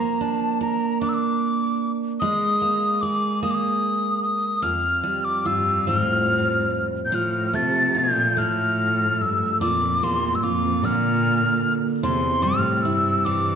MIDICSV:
0, 0, Header, 1, 4, 480
1, 0, Start_track
1, 0, Tempo, 805369
1, 1321, Time_signature, 6, 3, 24, 8
1, 2766, Tempo, 828729
1, 5646, Tempo, 807537
1, 7988, End_track
2, 0, Start_track
2, 0, Title_t, "Tin whistle"
2, 0, Program_c, 0, 75
2, 0, Note_on_c, 0, 82, 73
2, 131, Note_on_c, 0, 81, 72
2, 140, Note_off_c, 0, 82, 0
2, 372, Note_on_c, 0, 82, 74
2, 381, Note_off_c, 0, 81, 0
2, 602, Note_off_c, 0, 82, 0
2, 606, Note_on_c, 0, 86, 75
2, 650, Note_on_c, 0, 88, 62
2, 659, Note_off_c, 0, 86, 0
2, 680, Note_on_c, 0, 86, 77
2, 689, Note_off_c, 0, 88, 0
2, 1139, Note_off_c, 0, 86, 0
2, 1311, Note_on_c, 0, 87, 89
2, 1796, Note_on_c, 0, 86, 82
2, 1805, Note_off_c, 0, 87, 0
2, 2039, Note_off_c, 0, 86, 0
2, 2046, Note_on_c, 0, 87, 82
2, 2090, Note_on_c, 0, 86, 69
2, 2099, Note_off_c, 0, 87, 0
2, 2113, Note_on_c, 0, 87, 88
2, 2122, Note_off_c, 0, 86, 0
2, 2515, Note_off_c, 0, 87, 0
2, 2519, Note_on_c, 0, 87, 83
2, 2759, Note_on_c, 0, 89, 90
2, 2768, Note_off_c, 0, 87, 0
2, 3116, Note_on_c, 0, 86, 79
2, 3125, Note_off_c, 0, 89, 0
2, 3243, Note_on_c, 0, 88, 83
2, 3251, Note_off_c, 0, 86, 0
2, 3475, Note_off_c, 0, 88, 0
2, 3475, Note_on_c, 0, 88, 82
2, 3539, Note_off_c, 0, 88, 0
2, 3539, Note_on_c, 0, 89, 82
2, 4046, Note_off_c, 0, 89, 0
2, 4163, Note_on_c, 0, 91, 64
2, 4219, Note_on_c, 0, 89, 84
2, 4228, Note_off_c, 0, 91, 0
2, 4452, Note_on_c, 0, 93, 80
2, 4461, Note_off_c, 0, 89, 0
2, 4695, Note_on_c, 0, 91, 86
2, 4704, Note_off_c, 0, 93, 0
2, 4934, Note_on_c, 0, 89, 85
2, 4942, Note_off_c, 0, 91, 0
2, 5416, Note_on_c, 0, 88, 82
2, 5424, Note_off_c, 0, 89, 0
2, 5640, Note_off_c, 0, 88, 0
2, 5644, Note_on_c, 0, 86, 84
2, 5897, Note_on_c, 0, 84, 78
2, 5906, Note_off_c, 0, 86, 0
2, 6084, Note_on_c, 0, 88, 56
2, 6092, Note_off_c, 0, 84, 0
2, 6132, Note_on_c, 0, 86, 82
2, 6141, Note_off_c, 0, 88, 0
2, 6381, Note_on_c, 0, 89, 89
2, 6390, Note_off_c, 0, 86, 0
2, 6906, Note_off_c, 0, 89, 0
2, 7087, Note_on_c, 0, 84, 89
2, 7320, Note_on_c, 0, 89, 84
2, 7329, Note_off_c, 0, 84, 0
2, 7555, Note_on_c, 0, 88, 85
2, 7563, Note_off_c, 0, 89, 0
2, 7808, Note_on_c, 0, 86, 88
2, 7817, Note_off_c, 0, 88, 0
2, 7988, Note_off_c, 0, 86, 0
2, 7988, End_track
3, 0, Start_track
3, 0, Title_t, "Steel-string acoustic guitar"
3, 0, Program_c, 1, 25
3, 0, Note_on_c, 1, 53, 69
3, 0, Note_on_c, 1, 58, 71
3, 124, Note_on_c, 1, 62, 50
3, 362, Note_on_c, 1, 70, 55
3, 479, Note_off_c, 1, 53, 0
3, 597, Note_off_c, 1, 62, 0
3, 605, Note_on_c, 1, 62, 60
3, 1319, Note_off_c, 1, 58, 0
3, 1322, Note_on_c, 1, 56, 73
3, 1368, Note_off_c, 1, 62, 0
3, 1559, Note_on_c, 1, 58, 51
3, 1801, Note_off_c, 1, 70, 0
3, 1804, Note_on_c, 1, 68, 60
3, 2035, Note_off_c, 1, 58, 0
3, 2042, Note_on_c, 1, 58, 61
3, 2755, Note_on_c, 1, 41, 70
3, 2765, Note_off_c, 1, 56, 0
3, 2812, Note_off_c, 1, 58, 0
3, 2814, Note_off_c, 1, 68, 0
3, 2994, Note_on_c, 1, 55, 52
3, 3238, Note_on_c, 1, 65, 56
3, 3479, Note_on_c, 1, 53, 57
3, 4200, Note_off_c, 1, 41, 0
3, 4200, Note_off_c, 1, 53, 0
3, 4202, Note_on_c, 1, 53, 68
3, 4250, Note_off_c, 1, 55, 0
3, 4442, Note_on_c, 1, 57, 50
3, 4679, Note_off_c, 1, 65, 0
3, 4681, Note_on_c, 1, 65, 52
3, 4918, Note_off_c, 1, 57, 0
3, 4925, Note_on_c, 1, 57, 56
3, 5645, Note_on_c, 1, 46, 76
3, 5693, Note_off_c, 1, 57, 0
3, 5894, Note_on_c, 1, 58, 52
3, 6130, Note_off_c, 1, 65, 0
3, 6133, Note_on_c, 1, 65, 59
3, 6245, Note_off_c, 1, 53, 0
3, 6373, Note_on_c, 1, 50, 62
3, 7076, Note_off_c, 1, 46, 0
3, 7084, Note_on_c, 1, 48, 78
3, 7126, Note_off_c, 1, 65, 0
3, 7127, Note_off_c, 1, 50, 0
3, 7127, Note_off_c, 1, 58, 0
3, 7315, Note_on_c, 1, 55, 59
3, 7571, Note_on_c, 1, 64, 59
3, 7813, Note_on_c, 1, 52, 66
3, 7988, Note_off_c, 1, 48, 0
3, 7988, Note_off_c, 1, 52, 0
3, 7988, Note_off_c, 1, 55, 0
3, 7988, Note_off_c, 1, 64, 0
3, 7988, End_track
4, 0, Start_track
4, 0, Title_t, "Cello"
4, 0, Program_c, 2, 42
4, 3242, Note_on_c, 2, 43, 69
4, 3487, Note_on_c, 2, 45, 75
4, 3496, Note_off_c, 2, 43, 0
4, 4052, Note_off_c, 2, 45, 0
4, 4168, Note_on_c, 2, 46, 56
4, 4213, Note_on_c, 2, 45, 69
4, 4222, Note_off_c, 2, 46, 0
4, 4459, Note_on_c, 2, 48, 75
4, 4467, Note_off_c, 2, 45, 0
4, 4699, Note_on_c, 2, 46, 74
4, 4708, Note_off_c, 2, 48, 0
4, 4937, Note_on_c, 2, 45, 77
4, 4946, Note_off_c, 2, 46, 0
4, 5408, Note_on_c, 2, 43, 69
4, 5417, Note_off_c, 2, 45, 0
4, 5643, Note_off_c, 2, 43, 0
4, 5646, Note_on_c, 2, 41, 72
4, 5894, Note_on_c, 2, 40, 73
4, 5903, Note_off_c, 2, 41, 0
4, 6087, Note_on_c, 2, 43, 49
4, 6096, Note_off_c, 2, 40, 0
4, 6129, Note_on_c, 2, 41, 75
4, 6138, Note_off_c, 2, 43, 0
4, 6375, Note_on_c, 2, 46, 85
4, 6383, Note_off_c, 2, 41, 0
4, 6903, Note_off_c, 2, 46, 0
4, 7087, Note_on_c, 2, 40, 72
4, 7322, Note_on_c, 2, 45, 74
4, 7331, Note_off_c, 2, 40, 0
4, 7569, Note_on_c, 2, 43, 78
4, 7578, Note_off_c, 2, 45, 0
4, 7806, Note_off_c, 2, 43, 0
4, 7806, Note_on_c, 2, 43, 73
4, 7988, Note_off_c, 2, 43, 0
4, 7988, End_track
0, 0, End_of_file